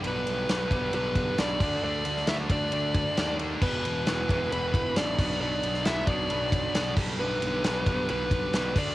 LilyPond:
<<
  \new Staff \with { instrumentName = "Lead electric guitar" } { \time 4/4 \key g \major \tempo 4 = 134 b'2 b'4 d''4 | d''4 e''8 d''2 r8 | b'2 b'4 d''4 | d''4 e''8 d''2 r8 |
b'2 b'4. d''8 | }
  \new Staff \with { instrumentName = "Lead electric guitar" } { \time 4/4 \key g \major b2 b4 d'4 | d'4 e'8 d'2 r8 | b2 b4 d'4 | d'4 e'8 d'2 r8 |
b2 b4. d'8 | }
  \new Staff \with { instrumentName = "Distorted electric guitar" } { \clef bass \time 4/4 \key g \major <g, d g>4 <g, d g>8 <g, d g>8 <g, d g>4 <g, d g>8 <d a d'>8 | <d a d'>4 <d a d'>8 <d a d'>8 <d a d'>4 <d a d'>8 <d a d'>8 | <e, b, e>4 <e, b, e>8 <e, b, e>8 <e, b, e>4 <e, b, e>8 <b, fis b>8 | <b, fis b>4 <b, fis b>8 <b, fis b>8 <b, fis b>4 <b, fis b>8 <g, d g>8 |
<g, d g>4 <g, d g>8 <g, d g>8 <g, d g>4 <g, d g>8 <d a d'>8 | }
  \new Staff \with { instrumentName = "Distorted electric guitar" } { \clef bass \time 4/4 \key g \major <g, d g>4 <g, d g>8 <g, d g>8 <g, d g>4 <g, d g>8 <d a d'>8 | <d a d'>4 <d a d'>8 <d a d'>8 <d a d'>4 <d a d'>8 <d a d'>8 | <e, b, e>4 <e, b, e>8 <e, b, e>8 <e, b, e>4 <e, b, e>8 <b, fis b>8 | <b, fis b>4 <b, fis b>8 <b, fis b>8 <b, fis b>4 <b, fis b>8 <g, d g>8 |
<g, d g>4 <g, d g>8 <g, d g>8 <g, d g>4 <g, d g>8 <d a d'>8 | }
  \new Staff \with { instrumentName = "Picked electric bass" } { \clef bass \time 4/4 \key g \major b,,8 b,,8 b,,8 b,,8 b,,4 b,,8 d,8 | d,8 d,8 d,8 d,8 d,4 dis,4 | e,,8 e,,8 e,,8 e,,8 e,,4 a,,8 b,,8 | b,,8 b,,8 b,,8 b,,8 b,,4 b,,8 b,,8 |
b,,8 b,,8 b,,8 b,,8 b,,4 b,,8 d,8 | }
  \new DrumStaff \with { instrumentName = "Drums" } \drummode { \time 4/4 cymr8 cymr8 <cymr sn>8 <bd cymr>8 cymr8 <bd cymr>8 <cymr sn>8 <cymc bd>8 | r8 cymr16 sn16 <cymr sn>8 <bd cymr>8 cymr8 <bd cymr>8 <cymr sn>8 cymr8 | <cymc bd>8 cymr8 <cymr sn>8 <bd cymr>8 cymr8 <bd cymr>8 <cymr sn>8 <cymc bd>8 | r8 cymr16 sn16 <cymr sn>8 <bd cymr>8 cymr8 <bd cymr>8 <cymr sn>8 <cymc bd>8 |
r8 cymr8 <cymr sn>8 <bd cymr>8 cymr8 <bd cymr>8 <cymr sn>8 <cymc bd>8 | }
>>